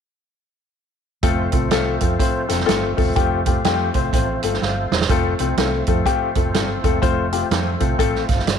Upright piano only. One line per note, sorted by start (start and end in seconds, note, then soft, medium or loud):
1.23 1.45 A3 medium
1.23 1.45 C4 medium
1.23 1.45 F4 medium
1.23 1.45 A4 loud
1.52 1.66 A3 medium
1.52 1.66 C4 medium
1.52 1.67 F4 medium
1.52 1.67 A4 medium
1.71 1.93 A3 loud
1.71 1.93 C4 medium
1.71 1.93 F4 medium
1.71 1.93 A4 loud
2.01 2.15 A3 medium
2.01 2.15 C4 medium
2.01 2.15 F4 medium
2.01 2.15 A4 medium
2.19 2.41 A3 medium
2.19 2.41 C4 medium
2.19 2.41 F4 medium
2.19 2.42 C5 medium
2.48 2.62 A3 medium
2.48 2.63 C4 medium
2.48 2.62 F4 medium
2.48 2.63 A4 medium
2.66 2.89 A3 loud
2.66 2.89 C4 medium
2.66 2.89 F4 medium
2.66 2.89 A4 loud
2.97 3.11 A3 medium
2.97 3.11 C4 medium
2.97 3.11 F4 medium
2.97 3.11 A4 medium
3.16 3.38 A3 loud
3.16 3.38 C4 medium
3.16 3.38 F4 medium
3.16 3.38 G4 loud
3.46 3.60 A3 medium
3.46 3.60 C4 medium
3.46 3.60 F4 medium
3.46 3.60 G4 medium
3.65 3.87 A3 loud
3.65 3.87 C4 medium
3.65 3.87 F4 medium
3.65 3.87 G4 loud
3.95 4.08 A3 medium
3.95 4.08 C4 medium
3.95 4.08 F4 medium
3.95 4.08 C5 medium
4.13 4.35 A3 medium
4.13 4.35 C4 medium
4.13 4.35 F4 medium
4.13 4.35 C5 medium
4.43 4.57 A3 medium
4.43 4.57 C4 medium
4.43 4.56 F4 medium
4.43 4.57 A4 medium
4.62 4.90 F5 medium
4.92 5.37 C5 medium
5.10 5.32 A3 loud
5.10 5.32 C4 medium
5.10 5.32 F4 medium
5.10 5.32 A4 loud
5.40 5.53 A3 medium
5.40 5.53 C4 medium
5.40 5.53 F4 medium
5.40 5.53 A4 medium
5.58 5.80 A3 medium
5.58 5.80 C4 medium
5.58 5.80 F4 medium
5.58 5.79 A4 medium
5.88 6.01 A3 medium
5.88 6.01 C4 medium
5.88 6.01 F4 medium
5.88 6.01 A4 medium
6.05 6.27 A3 loud
6.05 6.28 C4 medium
6.05 6.28 F4 medium
6.05 6.28 G4 loud
6.35 6.49 A3 medium
6.35 6.49 C4 medium
6.35 6.49 F4 medium
6.35 6.49 A4 medium
6.54 6.76 A3 medium
6.54 6.76 C4 medium
6.54 6.76 F4 medium
6.54 6.76 A4 medium
6.84 6.97 A3 medium
6.84 6.97 C4 medium
6.84 6.97 F4 medium
6.84 6.97 A4 medium
7.02 7.24 A3 loud
7.02 7.24 C4 medium
7.02 7.24 F4 medium
7.02 7.24 C5 loud
7.32 7.46 A3 medium
7.32 7.46 C4 medium
7.32 7.46 F4 medium
7.32 7.46 G4 medium
7.51 7.73 A3 medium
7.51 7.73 C4 medium
7.51 7.73 F4 medium
7.51 7.73 A4 medium
7.80 7.94 A3 medium
7.80 7.94 C4 medium
7.80 7.94 F4 medium
7.80 7.94 A4 medium
7.99 8.21 A3 loud
7.99 8.21 C4 loud
7.99 8.21 F4 medium
7.99 8.21 A4 loud
8.28 8.46 F5 medium
8.47 8.59 D5 medium